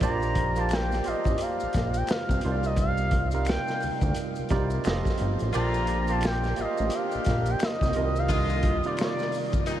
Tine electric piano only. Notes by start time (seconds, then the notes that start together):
0.02 A#3 F4 G4 C5 D5
0.57 A#3 F4 G4 C5 F5
1.05 A#3 F4 G4 C5 F5
2.44 C3 G3 D#4 F4 A#4 C5
2.52 D5
3.33 C3 G3 D#4 F4 A#4 F5
4.50 C3 G3 D#4 F4 A#4 D5
4.85 F3 F4 G4 A4 D#5
5.54 A#3 F4 G4 C5 D5
6.09 A#3 F4 G4 C5 F5
6.57 A#3 F4 G4 C5 D#5
6.65 F5
7.95 C3 D#3 G3 F4 A#4 D#5
8.85 C3 G3 D#4 F4 A#4 D5